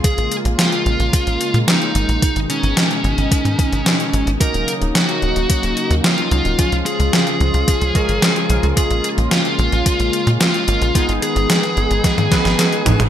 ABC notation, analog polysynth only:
X:1
M:4/4
L:1/8
Q:1/4=110
K:Bbphr
V:1 name="Analog polysynth"
z8 | z8 | [G,B,DE]6- [G,B,DE] [G,B,DE] | [F,A,DF]4- [F,A,DF] [F,A,DB]3 |
[A,B,DF]6- [A,B,DF] [A,B,DF] | [A,CEA]4- [A,CEA] [A,CEc]3 |]